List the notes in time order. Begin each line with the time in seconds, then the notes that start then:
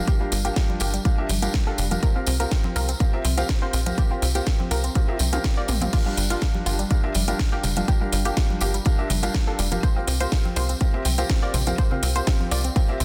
0.07 G4 F5, kick, closed hi-hat, tambourine
0.20 G3 D4 F4 G4 A#4 F5
0.32 G1 G3, open hi-hat, tambourine
0.45 D4 F4 G4 A#4 F5, closed hi-hat, tambourine
0.56 G3 D4 F4 G4 A#4 F5, kick, snare, closed hi-hat, tambourine
0.69 G3, high conga
0.80 G1 D4 F4 G4 A#4 F5, open hi-hat, tambourine
0.94 G3, closed hi-hat, tambourine
1.05 G3 D4 F4 G4 A#4 F5, kick, closed hi-hat, tambourine
1.18 D4 F4 G4 A#4 E5
1.29 G1 G3, open hi-hat, tambourine, high conga
1.42 G3 D4 F4 G4 A#4 F5, closed hi-hat, tambourine
1.54 G3, kick, snare, closed hi-hat
1.67 D4 F4 G4 A4 A#4 F5
1.78 F1 G3, open hi-hat, tambourine
1.91 G3 D4 F4 G4 A#4 F5, closed hi-hat, tambourine, high conga
2.03 F4 G4 A#4 F5, kick, closed hi-hat, tambourine
2.16 C4 F4 G4 A#4 F5
2.26 C2 C4, open hi-hat, tambourine
2.40 C4 F4 G4 A#4 F5, closed hi-hat, tambourine
2.51 C4, kick, snare, closed hi-hat, tambourine
2.64 C4, high conga
2.76 C2 C4 F4 G4 A#4 F5, open hi-hat, tambourine
2.88 C4, closed hi-hat, tambourine
3.00 C4 F4 G4 A#4 F5, kick, closed hi-hat, tambourine
3.13 C4 F4 G4 A#4 E5
3.24 C2 C4, open hi-hat, tambourine, high conga
3.37 C4 F4 G4 A#4 F5, closed hi-hat, tambourine
3.49 C4, kick, snare, closed hi-hat
3.62 C4 F4 G4 A#4 C5 F5
3.73 A#1 C4, open hi-hat, tambourine
3.86 C4 F4 G4 A#4 F5, closed hi-hat, tambourine, high conga
3.98 C4 F4 G4 A#4 F5, kick, closed hi-hat, tambourine
4.11 C4 F4 G4 A#4 F5
4.22 C2 C4, open hi-hat, tambourine
4.35 C4 F4 G4 A#4 F5, closed hi-hat, tambourine
4.47 C4 A#4, kick, snare, closed hi-hat
4.60 C4, high conga
4.71 C2 C4 F4 G4 A#4 F5, open hi-hat, tambourine
4.84 C4, closed hi-hat, tambourine
4.95 C4 F4 G4 A#4 F5, kick, closed hi-hat, high tom, tambourine
5.08 C4 F4 G4 A#4 E5, high tom
5.19 C2 C4, open hi-hat, tambourine, high conga
5.33 C4 F4 G4 A#4 F5, closed hi-hat, mid tom, tambourine
5.44 C4, kick, snare, closed hi-hat, mid tom
5.57 C4 F4 G4 A#4 D5 F5
5.68 A#1 C4, mid tom, open hi-hat, tambourine
5.81 C4 F4 G4 A#4 F5, closed hi-hat, mid tom, tambourine, high conga
5.93 D4 F4 G4 A#4 F5, kick, closed hi-hat, crash, tambourine
6.06 G3 D4 F4 G4 A#4 F5
6.17 G1 G3, open hi-hat, tambourine
6.30 D4 F4 G4 A#4 F5, closed hi-hat, tambourine
6.41 G3 F4 G4 A#4 F5, kick, snare, closed hi-hat, tambourine
6.55 G3, high conga
6.66 G1 D4 F4 G4 A#4 F5, open hi-hat, tambourine
6.79 G3, closed hi-hat, tambourine
6.90 G3 D4 F4 G4 A#4 F5, kick, closed hi-hat
7.03 D4 F4 G4 A#4 E5
7.14 G1 G3, open hi-hat, tambourine, high conga
7.28 G3 D4 F4 G4 A#4 F5, closed hi-hat, tambourine
7.39 G3, kick, snare, closed hi-hat, tambourine
7.52 D4 F4 G4 A#4 F5
7.63 F1 G3, open hi-hat, tambourine, low conga
7.76 G3 D4 F4 G4 A#4 F5, closed hi-hat, tambourine, high conga
7.88 G4 A#4, kick, closed hi-hat, tambourine
8.01 G3 D4 F4 G4 A#4 F5
8.12 G1 G3, open hi-hat, tambourine
8.25 D4 F4 G4 A#4 F5, closed hi-hat, tambourine
8.37 G3 G4, kick, snare, closed hi-hat, tambourine
8.50 G3, high conga
8.61 G1 D4 F4 G4 A#4 F5, open hi-hat, tambourine
8.74 G3, closed hi-hat, tambourine
8.85 G3 D4 F4 G4 A#4 F5, kick, closed hi-hat, tambourine
8.98 D4 F4 G4 A#4 E5
9.10 G1 G3, open hi-hat, tambourine, high conga, low conga
9.23 G3 D4 F4 G4 A#4 F5, closed hi-hat, tambourine
9.34 G3, kick, snare, closed hi-hat
9.47 D4 F4 G4 A4 A#4 F5
9.59 F1 G3, open hi-hat, tambourine
9.72 G3 D4 F4 G4 A#4 F5, closed hi-hat, tambourine, high conga
9.83 F4 G4 A#4 C5 F5, kick, closed hi-hat, tambourine
9.96 C4 F4 G4 A#4 F5
10.07 C2 C4, open hi-hat, tambourine
10.20 C4 F4 G4 A#4 C5 F5, closed hi-hat, tambourine
10.32 C4 A#4, kick, snare, closed hi-hat, tambourine
10.45 C4, high conga
10.56 C2 C4 F4 G4 A#4 C5 F5, open hi-hat, tambourine
10.69 C4, closed hi-hat, tambourine
10.81 C4 F4 G4 A#4 F5, kick, closed hi-hat
10.94 C4 F4 G4 A#4 E5
11.05 C2 C4, open hi-hat, tambourine, high conga
11.18 C4 F4 G4 A#4 F5, closed hi-hat, tambourine
11.29 C4, kick, snare, closed hi-hat
11.43 C4 F4 G4 A#4 D5 F5
11.54 A#1 C4, open hi-hat, tambourine, low conga
11.67 C4 F4 G4 A#4 F5, closed hi-hat, tambourine, high conga
11.78 F4 G4 A#4 C5 F5, kick, closed hi-hat, tambourine
11.91 C4 F4 G4 A#4 F5, low conga
12.03 C2 C4, open hi-hat, tambourine
12.16 C4 F4 G4 A#4 C5 F5, closed hi-hat, tambourine
12.27 C4 F4 G4 A#4, kick, snare, closed hi-hat, tambourine
12.40 C4, high conga
12.51 C2 C4 F4 G4 A#4 D5 F5, open hi-hat, tambourine
12.64 C4, closed hi-hat, tambourine
12.76 C4 F4 G4 A#4 F5, kick, closed hi-hat, tambourine
12.89 C4 F4 G4 A#4 E5
13.00 C2 C4, open hi-hat, tambourine, high conga, low conga